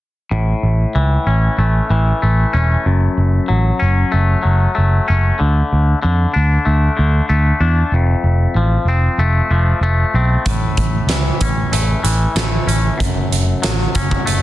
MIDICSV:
0, 0, Header, 1, 4, 480
1, 0, Start_track
1, 0, Key_signature, 3, "major"
1, 0, Tempo, 634921
1, 231, Time_signature, 4, 2, 24, 8
1, 10903, End_track
2, 0, Start_track
2, 0, Title_t, "Clean electric guitar"
2, 0, Program_c, 0, 27
2, 237, Note_on_c, 0, 45, 55
2, 719, Note_on_c, 0, 52, 60
2, 959, Note_on_c, 0, 61, 55
2, 1198, Note_on_c, 0, 57, 57
2, 1432, Note_off_c, 0, 52, 0
2, 1435, Note_off_c, 0, 45, 0
2, 1441, Note_on_c, 0, 52, 60
2, 1677, Note_off_c, 0, 57, 0
2, 1680, Note_on_c, 0, 57, 56
2, 1905, Note_off_c, 0, 61, 0
2, 1915, Note_on_c, 0, 61, 60
2, 2153, Note_off_c, 0, 61, 0
2, 2157, Note_off_c, 0, 52, 0
2, 2163, Note_on_c, 0, 42, 62
2, 2633, Note_on_c, 0, 54, 62
2, 2869, Note_on_c, 0, 61, 59
2, 3109, Note_off_c, 0, 57, 0
2, 3112, Note_on_c, 0, 57, 61
2, 3336, Note_off_c, 0, 54, 0
2, 3345, Note_on_c, 0, 54, 62
2, 3358, Note_off_c, 0, 42, 0
2, 3587, Note_off_c, 0, 57, 0
2, 3590, Note_on_c, 0, 57, 59
2, 3830, Note_off_c, 0, 61, 0
2, 3839, Note_on_c, 0, 61, 59
2, 4069, Note_off_c, 0, 54, 0
2, 4075, Note_on_c, 0, 50, 59
2, 4076, Note_off_c, 0, 61, 0
2, 4546, Note_off_c, 0, 50, 0
2, 4555, Note_on_c, 0, 50, 63
2, 4790, Note_on_c, 0, 62, 60
2, 5027, Note_off_c, 0, 57, 0
2, 5030, Note_on_c, 0, 57, 58
2, 5258, Note_off_c, 0, 50, 0
2, 5267, Note_on_c, 0, 50, 60
2, 5509, Note_off_c, 0, 57, 0
2, 5512, Note_on_c, 0, 57, 57
2, 5741, Note_off_c, 0, 62, 0
2, 5750, Note_on_c, 0, 62, 58
2, 5989, Note_off_c, 0, 50, 0
2, 5991, Note_off_c, 0, 62, 0
2, 6003, Note_on_c, 0, 41, 55
2, 6475, Note_on_c, 0, 53, 58
2, 6716, Note_on_c, 0, 60, 58
2, 6946, Note_off_c, 0, 57, 0
2, 6949, Note_on_c, 0, 57, 63
2, 7178, Note_off_c, 0, 53, 0
2, 7187, Note_on_c, 0, 53, 63
2, 7196, Note_off_c, 0, 41, 0
2, 7427, Note_off_c, 0, 57, 0
2, 7430, Note_on_c, 0, 57, 60
2, 7664, Note_off_c, 0, 60, 0
2, 7673, Note_on_c, 0, 60, 56
2, 7908, Note_off_c, 0, 53, 0
2, 7911, Note_off_c, 0, 60, 0
2, 7917, Note_on_c, 0, 45, 59
2, 8393, Note_on_c, 0, 52, 57
2, 8632, Note_on_c, 0, 61, 59
2, 8862, Note_off_c, 0, 57, 0
2, 8865, Note_on_c, 0, 57, 57
2, 9088, Note_off_c, 0, 52, 0
2, 9097, Note_on_c, 0, 52, 65
2, 9112, Note_off_c, 0, 45, 0
2, 9343, Note_off_c, 0, 57, 0
2, 9346, Note_on_c, 0, 57, 57
2, 9573, Note_off_c, 0, 61, 0
2, 9582, Note_on_c, 0, 61, 58
2, 9811, Note_on_c, 0, 42, 63
2, 9822, Note_off_c, 0, 52, 0
2, 9825, Note_off_c, 0, 61, 0
2, 10298, Note_on_c, 0, 54, 60
2, 10549, Note_on_c, 0, 61, 63
2, 10775, Note_off_c, 0, 57, 0
2, 10778, Note_on_c, 0, 57, 64
2, 10903, Note_off_c, 0, 42, 0
2, 10903, Note_off_c, 0, 54, 0
2, 10903, Note_off_c, 0, 57, 0
2, 10903, Note_off_c, 0, 61, 0
2, 10903, End_track
3, 0, Start_track
3, 0, Title_t, "Picked electric bass"
3, 0, Program_c, 1, 34
3, 237, Note_on_c, 1, 33, 69
3, 397, Note_off_c, 1, 33, 0
3, 477, Note_on_c, 1, 33, 66
3, 637, Note_off_c, 1, 33, 0
3, 720, Note_on_c, 1, 37, 74
3, 879, Note_off_c, 1, 37, 0
3, 957, Note_on_c, 1, 33, 70
3, 1117, Note_off_c, 1, 33, 0
3, 1196, Note_on_c, 1, 33, 75
3, 1357, Note_off_c, 1, 33, 0
3, 1437, Note_on_c, 1, 33, 75
3, 1598, Note_off_c, 1, 33, 0
3, 1687, Note_on_c, 1, 33, 76
3, 1844, Note_off_c, 1, 33, 0
3, 1921, Note_on_c, 1, 28, 79
3, 2080, Note_off_c, 1, 28, 0
3, 2161, Note_on_c, 1, 30, 74
3, 2320, Note_off_c, 1, 30, 0
3, 2400, Note_on_c, 1, 30, 74
3, 2559, Note_off_c, 1, 30, 0
3, 2644, Note_on_c, 1, 33, 75
3, 2802, Note_off_c, 1, 33, 0
3, 2888, Note_on_c, 1, 30, 70
3, 3045, Note_off_c, 1, 30, 0
3, 3127, Note_on_c, 1, 30, 71
3, 3284, Note_off_c, 1, 30, 0
3, 3364, Note_on_c, 1, 30, 73
3, 3522, Note_off_c, 1, 30, 0
3, 3614, Note_on_c, 1, 30, 72
3, 3769, Note_off_c, 1, 30, 0
3, 3852, Note_on_c, 1, 30, 81
3, 4008, Note_off_c, 1, 30, 0
3, 4087, Note_on_c, 1, 38, 75
3, 4244, Note_off_c, 1, 38, 0
3, 4328, Note_on_c, 1, 38, 76
3, 4485, Note_off_c, 1, 38, 0
3, 4568, Note_on_c, 1, 41, 71
3, 4725, Note_off_c, 1, 41, 0
3, 4808, Note_on_c, 1, 38, 73
3, 4965, Note_off_c, 1, 38, 0
3, 5039, Note_on_c, 1, 38, 73
3, 5198, Note_off_c, 1, 38, 0
3, 5283, Note_on_c, 1, 38, 71
3, 5441, Note_off_c, 1, 38, 0
3, 5516, Note_on_c, 1, 38, 71
3, 5677, Note_off_c, 1, 38, 0
3, 5749, Note_on_c, 1, 40, 73
3, 5912, Note_off_c, 1, 40, 0
3, 5986, Note_on_c, 1, 29, 70
3, 6150, Note_off_c, 1, 29, 0
3, 6227, Note_on_c, 1, 29, 72
3, 6390, Note_off_c, 1, 29, 0
3, 6463, Note_on_c, 1, 33, 71
3, 6628, Note_off_c, 1, 33, 0
3, 6691, Note_on_c, 1, 29, 68
3, 6860, Note_off_c, 1, 29, 0
3, 6941, Note_on_c, 1, 29, 72
3, 7106, Note_off_c, 1, 29, 0
3, 7186, Note_on_c, 1, 29, 70
3, 7350, Note_off_c, 1, 29, 0
3, 7416, Note_on_c, 1, 29, 74
3, 7583, Note_off_c, 1, 29, 0
3, 7667, Note_on_c, 1, 35, 80
3, 7830, Note_off_c, 1, 35, 0
3, 7912, Note_on_c, 1, 33, 78
3, 8073, Note_off_c, 1, 33, 0
3, 8150, Note_on_c, 1, 33, 73
3, 8311, Note_off_c, 1, 33, 0
3, 8368, Note_on_c, 1, 37, 75
3, 8537, Note_off_c, 1, 37, 0
3, 8629, Note_on_c, 1, 33, 70
3, 8791, Note_off_c, 1, 33, 0
3, 8861, Note_on_c, 1, 33, 76
3, 9025, Note_off_c, 1, 33, 0
3, 9102, Note_on_c, 1, 33, 70
3, 9266, Note_off_c, 1, 33, 0
3, 9340, Note_on_c, 1, 33, 75
3, 9505, Note_off_c, 1, 33, 0
3, 9579, Note_on_c, 1, 33, 78
3, 9744, Note_off_c, 1, 33, 0
3, 9828, Note_on_c, 1, 30, 74
3, 9990, Note_off_c, 1, 30, 0
3, 10065, Note_on_c, 1, 30, 71
3, 10227, Note_off_c, 1, 30, 0
3, 10315, Note_on_c, 1, 33, 74
3, 10474, Note_off_c, 1, 33, 0
3, 10551, Note_on_c, 1, 30, 74
3, 10711, Note_off_c, 1, 30, 0
3, 10794, Note_on_c, 1, 30, 74
3, 10903, Note_off_c, 1, 30, 0
3, 10903, End_track
4, 0, Start_track
4, 0, Title_t, "Drums"
4, 7906, Note_on_c, 9, 42, 68
4, 7907, Note_on_c, 9, 36, 88
4, 7981, Note_off_c, 9, 42, 0
4, 7983, Note_off_c, 9, 36, 0
4, 8144, Note_on_c, 9, 42, 49
4, 8146, Note_on_c, 9, 36, 69
4, 8220, Note_off_c, 9, 42, 0
4, 8222, Note_off_c, 9, 36, 0
4, 8382, Note_on_c, 9, 42, 75
4, 8387, Note_on_c, 9, 38, 94
4, 8458, Note_off_c, 9, 42, 0
4, 8463, Note_off_c, 9, 38, 0
4, 8623, Note_on_c, 9, 42, 53
4, 8626, Note_on_c, 9, 36, 73
4, 8699, Note_off_c, 9, 42, 0
4, 8702, Note_off_c, 9, 36, 0
4, 8868, Note_on_c, 9, 42, 72
4, 8943, Note_off_c, 9, 42, 0
4, 9106, Note_on_c, 9, 42, 55
4, 9182, Note_off_c, 9, 42, 0
4, 9344, Note_on_c, 9, 42, 74
4, 9349, Note_on_c, 9, 38, 91
4, 9419, Note_off_c, 9, 42, 0
4, 9425, Note_off_c, 9, 38, 0
4, 9590, Note_on_c, 9, 42, 55
4, 9665, Note_off_c, 9, 42, 0
4, 9830, Note_on_c, 9, 36, 94
4, 9830, Note_on_c, 9, 42, 77
4, 9905, Note_off_c, 9, 36, 0
4, 9906, Note_off_c, 9, 42, 0
4, 10073, Note_on_c, 9, 42, 52
4, 10149, Note_off_c, 9, 42, 0
4, 10308, Note_on_c, 9, 42, 78
4, 10313, Note_on_c, 9, 38, 100
4, 10383, Note_off_c, 9, 42, 0
4, 10388, Note_off_c, 9, 38, 0
4, 10545, Note_on_c, 9, 42, 55
4, 10549, Note_on_c, 9, 36, 74
4, 10621, Note_off_c, 9, 42, 0
4, 10625, Note_off_c, 9, 36, 0
4, 10670, Note_on_c, 9, 36, 74
4, 10745, Note_off_c, 9, 36, 0
4, 10790, Note_on_c, 9, 42, 77
4, 10865, Note_off_c, 9, 42, 0
4, 10903, End_track
0, 0, End_of_file